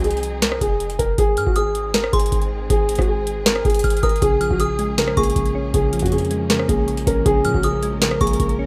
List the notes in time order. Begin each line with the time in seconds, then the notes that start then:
Already playing: C2 F3 C4 D#4 G#4
0.04 G#4, closed hi-hat
0.11 closed hi-hat
0.17 closed hi-hat
0.23 closed hi-hat
0.42 A#4, snare, closed hi-hat
0.52 cross-stick
0.61 F1 G#4, kick, closed hi-hat
0.80 closed hi-hat
0.90 closed hi-hat
0.99 F1 A#4, kick, closed hi-hat
1.18 G#1 D#3 G#3 C4 G#4, kick, closed hi-hat
1.37 G#2 F6, closed hi-hat
1.47 G#1 F#4, kick
1.56 G#4 D#6, closed hi-hat
1.75 closed hi-hat
1.94 A#4, snare, closed hi-hat
2.04 cross-stick
2.13 G#1 G#4 C6, kick, closed hi-hat
2.19 closed hi-hat
2.26 closed hi-hat
2.32 G#1, kick, closed hi-hat
2.42 closed hi-hat
2.70 G#1 G#4, kick, closed hi-hat
2.89 closed hi-hat, open hi-hat
2.95 G#1 F#4, kick, cross-stick, closed hi-hat
3.02 closed hi-hat
3.08 G#4
3.27 closed hi-hat
3.46 A#4, snare, closed hi-hat
3.56 cross-stick
3.65 G#1 G#4, kick, closed hi-hat
3.70 closed hi-hat
3.74 closed hi-hat
3.79 closed hi-hat
3.84 G#1 F6, kick, closed hi-hat
3.90 closed hi-hat
3.97 closed hi-hat
4.03 G#1 A#4 D#6, kick, closed hi-hat
4.09 closed hi-hat
4.16 closed hi-hat
4.22 A#1 C#3 F3 A#3 C#4 G#4, kick, closed hi-hat
4.40 F3 F6, closed hi-hat
4.51 A#1 F#4, kick
4.60 C#3 G#4 D#6, closed hi-hat
4.79 G#3, closed hi-hat
4.98 C#3 A#4, snare, closed hi-hat
5.08 cross-stick
5.17 A#1 A#3 G#4 C#6, kick, closed hi-hat
5.23 closed hi-hat
5.30 closed hi-hat
5.36 A#1 C#3, kick, closed hi-hat
5.46 closed hi-hat
5.55 C#4
5.74 A#1 C#3 G#4, kick, closed hi-hat
5.93 F3, closed hi-hat, open hi-hat
5.99 F2 F#4, kick, closed hi-hat
6.06 closed hi-hat
6.12 C#3 G#4, closed hi-hat
6.18 closed hi-hat
6.25 closed hi-hat
6.31 G#3, closed hi-hat
6.50 C#3 A#4, snare, closed hi-hat
6.59 cross-stick
6.68 A#1 A#3 G#4, kick, closed hi-hat
6.87 C#3, closed hi-hat
6.97 closed hi-hat
7.07 A#1 C#4 A#4, kick, closed hi-hat
7.26 A#1 C#3 G#4 A#4, kick, closed hi-hat
7.45 A#2 F3 F6, closed hi-hat
7.54 A#1 F#4, kick
7.63 C#3 G#4 D#6, closed hi-hat
7.83 G#3, closed hi-hat
8.02 C#3 A#4, snare, closed hi-hat
8.11 cross-stick
8.21 A#1 A#3 G#4 C#6, kick, closed hi-hat
8.27 closed hi-hat
8.33 closed hi-hat
8.40 A#1 C#3, kick, closed hi-hat
8.49 closed hi-hat
8.59 C#4